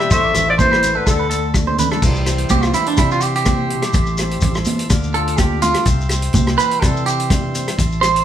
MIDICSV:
0, 0, Header, 1, 10, 480
1, 0, Start_track
1, 0, Key_signature, 0, "major"
1, 0, Tempo, 479616
1, 110, Time_signature, 4, 2, 24, 8
1, 8252, End_track
2, 0, Start_track
2, 0, Title_t, "Transistor combo organ"
2, 0, Program_c, 0, 18
2, 2031, Note_on_c, 0, 76, 64
2, 2036, Note_on_c, 0, 79, 57
2, 2036, Note_on_c, 0, 84, 70
2, 3936, Note_off_c, 0, 79, 0
2, 3950, Note_on_c, 0, 81, 58
2, 4884, Note_off_c, 0, 76, 0
2, 4886, Note_off_c, 0, 84, 0
2, 4887, Note_off_c, 0, 81, 0
2, 4899, Note_on_c, 0, 81, 54
2, 4902, Note_on_c, 0, 86, 66
2, 4904, Note_on_c, 0, 77, 58
2, 5856, Note_off_c, 0, 81, 0
2, 5858, Note_off_c, 0, 86, 0
2, 5859, Note_off_c, 0, 77, 0
2, 5861, Note_on_c, 0, 76, 72
2, 5863, Note_on_c, 0, 79, 63
2, 5866, Note_on_c, 0, 84, 79
2, 7767, Note_off_c, 0, 76, 0
2, 7768, Note_off_c, 0, 79, 0
2, 7780, Note_on_c, 0, 76, 65
2, 7785, Note_on_c, 0, 81, 61
2, 8252, Note_off_c, 0, 76, 0
2, 8252, Note_off_c, 0, 81, 0
2, 8252, Note_off_c, 0, 84, 0
2, 8252, End_track
3, 0, Start_track
3, 0, Title_t, "Clarinet"
3, 0, Program_c, 1, 71
3, 0, Note_on_c, 1, 76, 88
3, 111, Note_off_c, 1, 76, 0
3, 121, Note_on_c, 1, 76, 93
3, 460, Note_off_c, 1, 76, 0
3, 499, Note_on_c, 1, 74, 80
3, 545, Note_off_c, 1, 74, 0
3, 596, Note_on_c, 1, 72, 93
3, 964, Note_on_c, 1, 71, 75
3, 979, Note_off_c, 1, 72, 0
3, 1073, Note_off_c, 1, 71, 0
3, 1079, Note_on_c, 1, 69, 69
3, 1523, Note_off_c, 1, 69, 0
3, 8252, End_track
4, 0, Start_track
4, 0, Title_t, "Clean electric guitar"
4, 0, Program_c, 2, 27
4, 8, Note_on_c, 2, 67, 67
4, 109, Note_off_c, 2, 67, 0
4, 115, Note_on_c, 2, 72, 85
4, 236, Note_off_c, 2, 72, 0
4, 245, Note_on_c, 2, 74, 69
4, 340, Note_off_c, 2, 74, 0
4, 344, Note_on_c, 2, 76, 68
4, 575, Note_off_c, 2, 76, 0
4, 581, Note_on_c, 2, 72, 75
4, 708, Note_off_c, 2, 72, 0
4, 712, Note_on_c, 2, 71, 66
4, 944, Note_off_c, 2, 71, 0
4, 951, Note_on_c, 2, 69, 63
4, 1047, Note_off_c, 2, 69, 0
4, 1059, Note_on_c, 2, 69, 78
4, 1188, Note_off_c, 2, 69, 0
4, 1195, Note_on_c, 2, 71, 68
4, 1294, Note_off_c, 2, 71, 0
4, 1298, Note_on_c, 2, 69, 73
4, 1533, Note_off_c, 2, 69, 0
4, 1674, Note_on_c, 2, 72, 61
4, 1783, Note_off_c, 2, 72, 0
4, 1792, Note_on_c, 2, 71, 80
4, 1913, Note_off_c, 2, 71, 0
4, 1917, Note_on_c, 2, 69, 67
4, 2025, Note_off_c, 2, 69, 0
4, 2507, Note_on_c, 2, 67, 80
4, 2637, Note_off_c, 2, 67, 0
4, 2637, Note_on_c, 2, 65, 84
4, 2740, Note_off_c, 2, 65, 0
4, 2744, Note_on_c, 2, 64, 81
4, 2874, Note_off_c, 2, 64, 0
4, 2878, Note_on_c, 2, 62, 72
4, 2987, Note_off_c, 2, 62, 0
4, 2988, Note_on_c, 2, 64, 75
4, 3116, Note_off_c, 2, 64, 0
4, 3122, Note_on_c, 2, 65, 73
4, 3229, Note_off_c, 2, 65, 0
4, 3229, Note_on_c, 2, 67, 85
4, 3349, Note_off_c, 2, 67, 0
4, 3361, Note_on_c, 2, 67, 77
4, 4522, Note_off_c, 2, 67, 0
4, 5147, Note_on_c, 2, 69, 86
4, 5391, Note_off_c, 2, 69, 0
4, 5391, Note_on_c, 2, 67, 88
4, 5623, Note_off_c, 2, 67, 0
4, 5627, Note_on_c, 2, 65, 93
4, 5862, Note_off_c, 2, 65, 0
4, 6583, Note_on_c, 2, 71, 106
4, 6823, Note_off_c, 2, 71, 0
4, 6823, Note_on_c, 2, 69, 81
4, 7060, Note_off_c, 2, 69, 0
4, 7067, Note_on_c, 2, 67, 81
4, 7302, Note_off_c, 2, 67, 0
4, 8020, Note_on_c, 2, 72, 95
4, 8252, Note_off_c, 2, 72, 0
4, 8252, End_track
5, 0, Start_track
5, 0, Title_t, "Steel-string acoustic guitar"
5, 0, Program_c, 3, 25
5, 0, Note_on_c, 3, 47, 67
5, 0, Note_on_c, 3, 55, 58
5, 106, Note_off_c, 3, 47, 0
5, 110, Note_on_c, 3, 45, 65
5, 115, Note_off_c, 3, 55, 0
5, 116, Note_on_c, 3, 52, 61
5, 122, Note_on_c, 3, 57, 60
5, 135, Note_on_c, 3, 60, 56
5, 138, Note_on_c, 3, 64, 65
5, 346, Note_off_c, 3, 52, 0
5, 358, Note_on_c, 3, 52, 57
5, 585, Note_off_c, 3, 57, 0
5, 597, Note_on_c, 3, 57, 58
5, 821, Note_off_c, 3, 52, 0
5, 833, Note_on_c, 3, 52, 58
5, 1046, Note_off_c, 3, 52, 0
5, 1048, Note_off_c, 3, 57, 0
5, 1058, Note_off_c, 3, 60, 0
5, 1059, Note_on_c, 3, 50, 70
5, 1071, Note_off_c, 3, 45, 0
5, 1084, Note_off_c, 3, 64, 0
5, 1295, Note_on_c, 3, 57, 60
5, 1550, Note_on_c, 3, 62, 54
5, 1768, Note_off_c, 3, 57, 0
5, 1780, Note_on_c, 3, 57, 63
5, 2000, Note_off_c, 3, 57, 0
5, 2005, Note_off_c, 3, 62, 0
5, 2024, Note_on_c, 3, 48, 74
5, 2026, Note_off_c, 3, 50, 0
5, 2035, Note_on_c, 3, 52, 62
5, 2042, Note_on_c, 3, 55, 61
5, 2047, Note_on_c, 3, 60, 61
5, 2053, Note_on_c, 3, 64, 71
5, 2256, Note_off_c, 3, 60, 0
5, 2268, Note_on_c, 3, 60, 51
5, 2742, Note_off_c, 3, 52, 0
5, 2749, Note_off_c, 3, 48, 0
5, 2755, Note_on_c, 3, 52, 60
5, 2981, Note_off_c, 3, 55, 0
5, 2993, Note_on_c, 3, 55, 61
5, 3470, Note_on_c, 3, 48, 68
5, 3696, Note_off_c, 3, 48, 0
5, 3700, Note_on_c, 3, 47, 62
5, 3924, Note_off_c, 3, 60, 0
5, 3928, Note_off_c, 3, 52, 0
5, 3947, Note_off_c, 3, 47, 0
5, 3953, Note_off_c, 3, 55, 0
5, 3957, Note_on_c, 3, 45, 71
5, 4205, Note_on_c, 3, 60, 59
5, 4677, Note_on_c, 3, 52, 65
5, 4888, Note_off_c, 3, 52, 0
5, 4893, Note_off_c, 3, 60, 0
5, 4903, Note_on_c, 3, 50, 76
5, 4915, Note_off_c, 3, 45, 0
5, 5149, Note_off_c, 3, 64, 0
5, 5153, Note_on_c, 3, 65, 72
5, 5630, Note_on_c, 3, 57, 63
5, 5845, Note_off_c, 3, 57, 0
5, 5847, Note_off_c, 3, 65, 0
5, 5861, Note_on_c, 3, 48, 74
5, 5868, Note_off_c, 3, 50, 0
5, 6111, Note_on_c, 3, 60, 56
5, 6587, Note_off_c, 3, 48, 0
5, 6590, Note_on_c, 3, 52, 66
5, 6837, Note_on_c, 3, 55, 60
5, 7316, Note_on_c, 3, 43, 67
5, 7552, Note_off_c, 3, 60, 0
5, 7571, Note_on_c, 3, 60, 61
5, 7764, Note_off_c, 3, 52, 0
5, 7768, Note_off_c, 3, 43, 0
5, 7775, Note_off_c, 3, 60, 0
5, 7794, Note_off_c, 3, 55, 0
5, 8038, Note_on_c, 3, 60, 55
5, 8252, Note_off_c, 3, 60, 0
5, 8252, End_track
6, 0, Start_track
6, 0, Title_t, "Tenor saxophone"
6, 0, Program_c, 4, 66
6, 125, Note_on_c, 4, 57, 75
6, 462, Note_off_c, 4, 57, 0
6, 485, Note_on_c, 4, 53, 67
6, 534, Note_off_c, 4, 53, 0
6, 603, Note_on_c, 4, 52, 69
6, 962, Note_on_c, 4, 50, 66
6, 977, Note_off_c, 4, 52, 0
6, 1066, Note_off_c, 4, 50, 0
6, 1072, Note_on_c, 4, 50, 69
6, 1519, Note_off_c, 4, 50, 0
6, 8252, End_track
7, 0, Start_track
7, 0, Title_t, "Fingered electric bass"
7, 0, Program_c, 5, 33
7, 106, Note_on_c, 5, 33, 88
7, 317, Note_off_c, 5, 33, 0
7, 357, Note_on_c, 5, 33, 77
7, 982, Note_off_c, 5, 33, 0
7, 1068, Note_on_c, 5, 38, 82
7, 1906, Note_off_c, 5, 38, 0
7, 2024, Note_on_c, 5, 36, 96
7, 2446, Note_off_c, 5, 36, 0
7, 2502, Note_on_c, 5, 36, 83
7, 2716, Note_off_c, 5, 36, 0
7, 2985, Note_on_c, 5, 48, 88
7, 3825, Note_off_c, 5, 48, 0
7, 3948, Note_on_c, 5, 33, 94
7, 4368, Note_off_c, 5, 33, 0
7, 4426, Note_on_c, 5, 33, 87
7, 4638, Note_off_c, 5, 33, 0
7, 4906, Note_on_c, 5, 38, 95
7, 5745, Note_off_c, 5, 38, 0
7, 5864, Note_on_c, 5, 36, 97
7, 6286, Note_off_c, 5, 36, 0
7, 6350, Note_on_c, 5, 36, 87
7, 6560, Note_off_c, 5, 36, 0
7, 6831, Note_on_c, 5, 48, 90
7, 7667, Note_off_c, 5, 48, 0
7, 7792, Note_on_c, 5, 33, 94
7, 8209, Note_off_c, 5, 33, 0
7, 8252, End_track
8, 0, Start_track
8, 0, Title_t, "Muted steel-string acoustic guitar strokes"
8, 7784, Note_on_c, 9, 29, 70
8, 7884, Note_off_c, 9, 29, 0
8, 8252, End_track
9, 0, Start_track
9, 0, Title_t, "Shekere"
9, 108, Note_on_c, 9, 82, 85
9, 208, Note_off_c, 9, 82, 0
9, 353, Note_on_c, 9, 82, 66
9, 453, Note_off_c, 9, 82, 0
9, 596, Note_on_c, 9, 82, 84
9, 696, Note_off_c, 9, 82, 0
9, 833, Note_on_c, 9, 82, 71
9, 933, Note_off_c, 9, 82, 0
9, 1071, Note_on_c, 9, 82, 85
9, 1172, Note_off_c, 9, 82, 0
9, 1310, Note_on_c, 9, 82, 60
9, 1410, Note_off_c, 9, 82, 0
9, 1549, Note_on_c, 9, 82, 85
9, 1649, Note_off_c, 9, 82, 0
9, 1791, Note_on_c, 9, 82, 69
9, 1891, Note_off_c, 9, 82, 0
9, 2029, Note_on_c, 9, 82, 90
9, 2129, Note_off_c, 9, 82, 0
9, 2159, Note_on_c, 9, 82, 26
9, 2259, Note_off_c, 9, 82, 0
9, 2268, Note_on_c, 9, 82, 65
9, 2368, Note_off_c, 9, 82, 0
9, 2496, Note_on_c, 9, 82, 88
9, 2596, Note_off_c, 9, 82, 0
9, 2630, Note_on_c, 9, 82, 26
9, 2730, Note_off_c, 9, 82, 0
9, 2740, Note_on_c, 9, 82, 66
9, 2840, Note_off_c, 9, 82, 0
9, 2972, Note_on_c, 9, 82, 82
9, 3073, Note_off_c, 9, 82, 0
9, 3115, Note_on_c, 9, 82, 26
9, 3212, Note_off_c, 9, 82, 0
9, 3212, Note_on_c, 9, 82, 68
9, 3312, Note_off_c, 9, 82, 0
9, 3459, Note_on_c, 9, 82, 88
9, 3559, Note_off_c, 9, 82, 0
9, 3831, Note_on_c, 9, 82, 25
9, 3931, Note_off_c, 9, 82, 0
9, 3936, Note_on_c, 9, 82, 85
9, 4036, Note_off_c, 9, 82, 0
9, 4068, Note_on_c, 9, 82, 25
9, 4168, Note_off_c, 9, 82, 0
9, 4178, Note_on_c, 9, 82, 66
9, 4278, Note_off_c, 9, 82, 0
9, 4413, Note_on_c, 9, 82, 80
9, 4513, Note_off_c, 9, 82, 0
9, 4544, Note_on_c, 9, 82, 24
9, 4644, Note_off_c, 9, 82, 0
9, 4653, Note_on_c, 9, 82, 64
9, 4753, Note_off_c, 9, 82, 0
9, 4903, Note_on_c, 9, 82, 90
9, 5003, Note_off_c, 9, 82, 0
9, 5036, Note_on_c, 9, 82, 27
9, 5136, Note_off_c, 9, 82, 0
9, 5381, Note_on_c, 9, 82, 83
9, 5481, Note_off_c, 9, 82, 0
9, 5627, Note_on_c, 9, 82, 68
9, 5727, Note_off_c, 9, 82, 0
9, 5764, Note_on_c, 9, 82, 24
9, 5864, Note_off_c, 9, 82, 0
9, 5870, Note_on_c, 9, 82, 89
9, 5970, Note_off_c, 9, 82, 0
9, 6011, Note_on_c, 9, 82, 24
9, 6111, Note_off_c, 9, 82, 0
9, 6116, Note_on_c, 9, 82, 68
9, 6216, Note_off_c, 9, 82, 0
9, 6353, Note_on_c, 9, 82, 87
9, 6454, Note_off_c, 9, 82, 0
9, 6491, Note_on_c, 9, 82, 25
9, 6592, Note_off_c, 9, 82, 0
9, 6602, Note_on_c, 9, 82, 63
9, 6702, Note_off_c, 9, 82, 0
9, 6844, Note_on_c, 9, 82, 85
9, 6944, Note_off_c, 9, 82, 0
9, 6972, Note_on_c, 9, 82, 28
9, 7072, Note_off_c, 9, 82, 0
9, 7085, Note_on_c, 9, 82, 62
9, 7185, Note_off_c, 9, 82, 0
9, 7320, Note_on_c, 9, 82, 88
9, 7421, Note_off_c, 9, 82, 0
9, 7556, Note_on_c, 9, 82, 67
9, 7656, Note_off_c, 9, 82, 0
9, 7688, Note_on_c, 9, 82, 23
9, 7788, Note_off_c, 9, 82, 0
9, 7798, Note_on_c, 9, 82, 81
9, 7898, Note_off_c, 9, 82, 0
9, 7930, Note_on_c, 9, 82, 25
9, 8030, Note_off_c, 9, 82, 0
9, 8040, Note_on_c, 9, 82, 65
9, 8141, Note_off_c, 9, 82, 0
9, 8169, Note_on_c, 9, 82, 24
9, 8252, Note_off_c, 9, 82, 0
9, 8252, End_track
10, 0, Start_track
10, 0, Title_t, "Drums"
10, 1, Note_on_c, 9, 37, 62
10, 101, Note_off_c, 9, 37, 0
10, 109, Note_on_c, 9, 36, 83
10, 128, Note_on_c, 9, 62, 26
10, 209, Note_off_c, 9, 36, 0
10, 228, Note_off_c, 9, 62, 0
10, 344, Note_on_c, 9, 37, 60
10, 344, Note_on_c, 9, 42, 48
10, 365, Note_on_c, 9, 62, 23
10, 365, Note_on_c, 9, 64, 59
10, 444, Note_off_c, 9, 37, 0
10, 444, Note_off_c, 9, 42, 0
10, 465, Note_off_c, 9, 62, 0
10, 465, Note_off_c, 9, 64, 0
10, 589, Note_on_c, 9, 36, 80
10, 601, Note_on_c, 9, 63, 84
10, 690, Note_off_c, 9, 36, 0
10, 701, Note_off_c, 9, 63, 0
10, 728, Note_on_c, 9, 37, 68
10, 826, Note_on_c, 9, 42, 50
10, 829, Note_off_c, 9, 37, 0
10, 846, Note_on_c, 9, 63, 58
10, 926, Note_off_c, 9, 42, 0
10, 946, Note_off_c, 9, 63, 0
10, 1068, Note_on_c, 9, 37, 67
10, 1069, Note_on_c, 9, 36, 86
10, 1168, Note_off_c, 9, 37, 0
10, 1169, Note_off_c, 9, 36, 0
10, 1307, Note_on_c, 9, 42, 44
10, 1407, Note_off_c, 9, 42, 0
10, 1541, Note_on_c, 9, 37, 69
10, 1546, Note_on_c, 9, 36, 82
10, 1555, Note_on_c, 9, 63, 45
10, 1641, Note_off_c, 9, 37, 0
10, 1646, Note_off_c, 9, 36, 0
10, 1655, Note_off_c, 9, 63, 0
10, 1673, Note_on_c, 9, 63, 58
10, 1773, Note_off_c, 9, 63, 0
10, 1786, Note_on_c, 9, 42, 49
10, 1794, Note_on_c, 9, 64, 64
10, 1886, Note_off_c, 9, 42, 0
10, 1894, Note_off_c, 9, 64, 0
10, 1917, Note_on_c, 9, 37, 62
10, 1921, Note_on_c, 9, 64, 64
10, 2017, Note_off_c, 9, 37, 0
10, 2021, Note_off_c, 9, 64, 0
10, 2024, Note_on_c, 9, 36, 86
10, 2025, Note_on_c, 9, 49, 82
10, 2028, Note_on_c, 9, 62, 27
10, 2124, Note_off_c, 9, 36, 0
10, 2125, Note_off_c, 9, 49, 0
10, 2128, Note_off_c, 9, 62, 0
10, 2264, Note_on_c, 9, 37, 63
10, 2264, Note_on_c, 9, 42, 45
10, 2270, Note_on_c, 9, 62, 27
10, 2364, Note_off_c, 9, 37, 0
10, 2364, Note_off_c, 9, 42, 0
10, 2370, Note_off_c, 9, 62, 0
10, 2384, Note_on_c, 9, 42, 43
10, 2484, Note_off_c, 9, 42, 0
10, 2495, Note_on_c, 9, 42, 43
10, 2502, Note_on_c, 9, 36, 84
10, 2513, Note_on_c, 9, 63, 91
10, 2596, Note_off_c, 9, 42, 0
10, 2602, Note_off_c, 9, 36, 0
10, 2613, Note_off_c, 9, 63, 0
10, 2630, Note_on_c, 9, 37, 63
10, 2730, Note_off_c, 9, 37, 0
10, 2741, Note_on_c, 9, 42, 45
10, 2741, Note_on_c, 9, 63, 64
10, 2841, Note_off_c, 9, 42, 0
10, 2841, Note_off_c, 9, 63, 0
10, 2866, Note_on_c, 9, 42, 47
10, 2966, Note_off_c, 9, 42, 0
10, 2978, Note_on_c, 9, 37, 71
10, 2978, Note_on_c, 9, 42, 51
10, 2982, Note_on_c, 9, 36, 91
10, 3078, Note_off_c, 9, 37, 0
10, 3078, Note_off_c, 9, 42, 0
10, 3082, Note_off_c, 9, 36, 0
10, 3224, Note_on_c, 9, 42, 43
10, 3324, Note_off_c, 9, 42, 0
10, 3358, Note_on_c, 9, 42, 51
10, 3458, Note_off_c, 9, 42, 0
10, 3459, Note_on_c, 9, 37, 75
10, 3459, Note_on_c, 9, 42, 47
10, 3464, Note_on_c, 9, 36, 90
10, 3469, Note_on_c, 9, 63, 70
10, 3559, Note_off_c, 9, 37, 0
10, 3559, Note_off_c, 9, 42, 0
10, 3564, Note_off_c, 9, 36, 0
10, 3569, Note_off_c, 9, 63, 0
10, 3705, Note_on_c, 9, 42, 51
10, 3713, Note_on_c, 9, 62, 32
10, 3805, Note_off_c, 9, 42, 0
10, 3813, Note_off_c, 9, 62, 0
10, 3827, Note_on_c, 9, 37, 67
10, 3827, Note_on_c, 9, 42, 50
10, 3927, Note_off_c, 9, 37, 0
10, 3927, Note_off_c, 9, 42, 0
10, 3944, Note_on_c, 9, 42, 47
10, 3946, Note_on_c, 9, 36, 90
10, 3946, Note_on_c, 9, 62, 32
10, 4044, Note_off_c, 9, 42, 0
10, 4046, Note_off_c, 9, 36, 0
10, 4046, Note_off_c, 9, 62, 0
10, 4190, Note_on_c, 9, 37, 67
10, 4190, Note_on_c, 9, 42, 51
10, 4201, Note_on_c, 9, 62, 30
10, 4290, Note_off_c, 9, 37, 0
10, 4290, Note_off_c, 9, 42, 0
10, 4301, Note_off_c, 9, 62, 0
10, 4316, Note_on_c, 9, 42, 49
10, 4416, Note_off_c, 9, 42, 0
10, 4428, Note_on_c, 9, 36, 83
10, 4429, Note_on_c, 9, 42, 49
10, 4436, Note_on_c, 9, 64, 67
10, 4528, Note_off_c, 9, 36, 0
10, 4529, Note_off_c, 9, 42, 0
10, 4536, Note_off_c, 9, 64, 0
10, 4557, Note_on_c, 9, 37, 74
10, 4657, Note_off_c, 9, 37, 0
10, 4669, Note_on_c, 9, 63, 86
10, 4670, Note_on_c, 9, 42, 52
10, 4769, Note_off_c, 9, 63, 0
10, 4770, Note_off_c, 9, 42, 0
10, 4794, Note_on_c, 9, 42, 53
10, 4894, Note_off_c, 9, 42, 0
10, 4903, Note_on_c, 9, 37, 72
10, 4903, Note_on_c, 9, 42, 50
10, 4907, Note_on_c, 9, 36, 88
10, 4924, Note_on_c, 9, 62, 29
10, 5003, Note_off_c, 9, 37, 0
10, 5003, Note_off_c, 9, 42, 0
10, 5007, Note_off_c, 9, 36, 0
10, 5025, Note_off_c, 9, 62, 0
10, 5146, Note_on_c, 9, 42, 45
10, 5246, Note_off_c, 9, 42, 0
10, 5279, Note_on_c, 9, 42, 57
10, 5379, Note_off_c, 9, 42, 0
10, 5387, Note_on_c, 9, 37, 72
10, 5387, Note_on_c, 9, 42, 55
10, 5389, Note_on_c, 9, 36, 92
10, 5394, Note_on_c, 9, 63, 70
10, 5487, Note_off_c, 9, 37, 0
10, 5487, Note_off_c, 9, 42, 0
10, 5489, Note_off_c, 9, 36, 0
10, 5494, Note_off_c, 9, 63, 0
10, 5623, Note_on_c, 9, 42, 55
10, 5639, Note_on_c, 9, 62, 29
10, 5639, Note_on_c, 9, 63, 70
10, 5723, Note_off_c, 9, 42, 0
10, 5739, Note_off_c, 9, 62, 0
10, 5739, Note_off_c, 9, 63, 0
10, 5748, Note_on_c, 9, 37, 68
10, 5748, Note_on_c, 9, 42, 50
10, 5848, Note_off_c, 9, 37, 0
10, 5848, Note_off_c, 9, 42, 0
10, 5858, Note_on_c, 9, 42, 47
10, 5864, Note_on_c, 9, 36, 83
10, 5873, Note_on_c, 9, 62, 27
10, 5958, Note_off_c, 9, 42, 0
10, 5964, Note_off_c, 9, 36, 0
10, 5973, Note_off_c, 9, 62, 0
10, 6097, Note_on_c, 9, 37, 63
10, 6097, Note_on_c, 9, 42, 47
10, 6111, Note_on_c, 9, 62, 28
10, 6197, Note_off_c, 9, 37, 0
10, 6197, Note_off_c, 9, 42, 0
10, 6211, Note_off_c, 9, 62, 0
10, 6226, Note_on_c, 9, 42, 48
10, 6326, Note_off_c, 9, 42, 0
10, 6332, Note_on_c, 9, 42, 46
10, 6344, Note_on_c, 9, 63, 92
10, 6345, Note_on_c, 9, 36, 87
10, 6432, Note_off_c, 9, 42, 0
10, 6444, Note_off_c, 9, 63, 0
10, 6446, Note_off_c, 9, 36, 0
10, 6477, Note_on_c, 9, 37, 73
10, 6577, Note_off_c, 9, 37, 0
10, 6589, Note_on_c, 9, 42, 45
10, 6689, Note_off_c, 9, 42, 0
10, 6717, Note_on_c, 9, 42, 47
10, 6817, Note_off_c, 9, 42, 0
10, 6827, Note_on_c, 9, 37, 71
10, 6827, Note_on_c, 9, 42, 49
10, 6830, Note_on_c, 9, 36, 87
10, 6927, Note_off_c, 9, 37, 0
10, 6927, Note_off_c, 9, 42, 0
10, 6930, Note_off_c, 9, 36, 0
10, 7065, Note_on_c, 9, 42, 48
10, 7165, Note_off_c, 9, 42, 0
10, 7202, Note_on_c, 9, 42, 49
10, 7302, Note_off_c, 9, 42, 0
10, 7309, Note_on_c, 9, 36, 84
10, 7310, Note_on_c, 9, 37, 70
10, 7310, Note_on_c, 9, 42, 53
10, 7312, Note_on_c, 9, 63, 69
10, 7409, Note_off_c, 9, 36, 0
10, 7410, Note_off_c, 9, 37, 0
10, 7410, Note_off_c, 9, 42, 0
10, 7412, Note_off_c, 9, 63, 0
10, 7554, Note_on_c, 9, 42, 52
10, 7555, Note_on_c, 9, 62, 29
10, 7654, Note_off_c, 9, 42, 0
10, 7655, Note_off_c, 9, 62, 0
10, 7684, Note_on_c, 9, 37, 63
10, 7684, Note_on_c, 9, 42, 50
10, 7785, Note_off_c, 9, 37, 0
10, 7785, Note_off_c, 9, 42, 0
10, 7785, Note_on_c, 9, 62, 32
10, 7792, Note_on_c, 9, 36, 86
10, 7797, Note_on_c, 9, 42, 50
10, 7885, Note_off_c, 9, 62, 0
10, 7892, Note_off_c, 9, 36, 0
10, 7897, Note_off_c, 9, 42, 0
10, 8029, Note_on_c, 9, 62, 28
10, 8034, Note_on_c, 9, 37, 70
10, 8034, Note_on_c, 9, 42, 46
10, 8129, Note_off_c, 9, 62, 0
10, 8134, Note_off_c, 9, 37, 0
10, 8134, Note_off_c, 9, 42, 0
10, 8166, Note_on_c, 9, 42, 51
10, 8252, Note_off_c, 9, 42, 0
10, 8252, End_track
0, 0, End_of_file